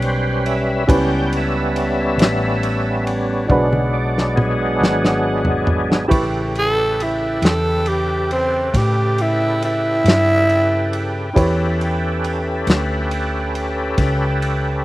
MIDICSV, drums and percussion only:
0, 0, Header, 1, 2, 480
1, 0, Start_track
1, 0, Tempo, 872093
1, 488, Time_signature, 12, 3, 24, 8
1, 8172, End_track
2, 0, Start_track
2, 0, Title_t, "Drums"
2, 12, Note_on_c, 9, 51, 62
2, 67, Note_off_c, 9, 51, 0
2, 252, Note_on_c, 9, 51, 60
2, 307, Note_off_c, 9, 51, 0
2, 488, Note_on_c, 9, 36, 121
2, 492, Note_on_c, 9, 51, 95
2, 543, Note_off_c, 9, 36, 0
2, 547, Note_off_c, 9, 51, 0
2, 730, Note_on_c, 9, 51, 65
2, 785, Note_off_c, 9, 51, 0
2, 969, Note_on_c, 9, 51, 62
2, 1024, Note_off_c, 9, 51, 0
2, 1206, Note_on_c, 9, 51, 82
2, 1221, Note_on_c, 9, 38, 104
2, 1261, Note_off_c, 9, 51, 0
2, 1276, Note_off_c, 9, 38, 0
2, 1448, Note_on_c, 9, 51, 61
2, 1503, Note_off_c, 9, 51, 0
2, 1689, Note_on_c, 9, 51, 60
2, 1744, Note_off_c, 9, 51, 0
2, 1924, Note_on_c, 9, 36, 82
2, 1926, Note_on_c, 9, 48, 61
2, 1979, Note_off_c, 9, 36, 0
2, 1981, Note_off_c, 9, 48, 0
2, 2051, Note_on_c, 9, 48, 58
2, 2106, Note_off_c, 9, 48, 0
2, 2301, Note_on_c, 9, 38, 66
2, 2356, Note_off_c, 9, 38, 0
2, 2407, Note_on_c, 9, 47, 81
2, 2462, Note_off_c, 9, 47, 0
2, 2661, Note_on_c, 9, 38, 84
2, 2716, Note_off_c, 9, 38, 0
2, 2778, Note_on_c, 9, 38, 75
2, 2833, Note_off_c, 9, 38, 0
2, 2999, Note_on_c, 9, 43, 76
2, 3054, Note_off_c, 9, 43, 0
2, 3121, Note_on_c, 9, 43, 90
2, 3176, Note_off_c, 9, 43, 0
2, 3257, Note_on_c, 9, 38, 90
2, 3312, Note_off_c, 9, 38, 0
2, 3364, Note_on_c, 9, 36, 113
2, 3365, Note_on_c, 9, 51, 92
2, 3419, Note_off_c, 9, 36, 0
2, 3420, Note_off_c, 9, 51, 0
2, 3607, Note_on_c, 9, 51, 54
2, 3662, Note_off_c, 9, 51, 0
2, 3854, Note_on_c, 9, 51, 62
2, 3909, Note_off_c, 9, 51, 0
2, 4086, Note_on_c, 9, 51, 77
2, 4101, Note_on_c, 9, 38, 99
2, 4141, Note_off_c, 9, 51, 0
2, 4156, Note_off_c, 9, 38, 0
2, 4324, Note_on_c, 9, 51, 59
2, 4379, Note_off_c, 9, 51, 0
2, 4572, Note_on_c, 9, 51, 58
2, 4627, Note_off_c, 9, 51, 0
2, 4809, Note_on_c, 9, 36, 74
2, 4812, Note_on_c, 9, 51, 81
2, 4828, Note_on_c, 9, 38, 31
2, 4864, Note_off_c, 9, 36, 0
2, 4867, Note_off_c, 9, 51, 0
2, 4883, Note_off_c, 9, 38, 0
2, 5054, Note_on_c, 9, 51, 58
2, 5109, Note_off_c, 9, 51, 0
2, 5297, Note_on_c, 9, 51, 62
2, 5352, Note_off_c, 9, 51, 0
2, 5534, Note_on_c, 9, 51, 80
2, 5550, Note_on_c, 9, 38, 110
2, 5589, Note_off_c, 9, 51, 0
2, 5605, Note_off_c, 9, 38, 0
2, 5776, Note_on_c, 9, 51, 52
2, 5831, Note_off_c, 9, 51, 0
2, 6016, Note_on_c, 9, 51, 56
2, 6071, Note_off_c, 9, 51, 0
2, 6255, Note_on_c, 9, 36, 115
2, 6259, Note_on_c, 9, 51, 86
2, 6310, Note_off_c, 9, 36, 0
2, 6314, Note_off_c, 9, 51, 0
2, 6501, Note_on_c, 9, 51, 54
2, 6556, Note_off_c, 9, 51, 0
2, 6739, Note_on_c, 9, 51, 60
2, 6794, Note_off_c, 9, 51, 0
2, 6973, Note_on_c, 9, 51, 78
2, 6989, Note_on_c, 9, 38, 102
2, 7028, Note_off_c, 9, 51, 0
2, 7044, Note_off_c, 9, 38, 0
2, 7217, Note_on_c, 9, 51, 64
2, 7272, Note_off_c, 9, 51, 0
2, 7458, Note_on_c, 9, 51, 60
2, 7513, Note_off_c, 9, 51, 0
2, 7693, Note_on_c, 9, 51, 80
2, 7694, Note_on_c, 9, 36, 87
2, 7708, Note_on_c, 9, 38, 30
2, 7748, Note_off_c, 9, 51, 0
2, 7749, Note_off_c, 9, 36, 0
2, 7763, Note_off_c, 9, 38, 0
2, 7938, Note_on_c, 9, 51, 61
2, 7993, Note_off_c, 9, 51, 0
2, 8172, End_track
0, 0, End_of_file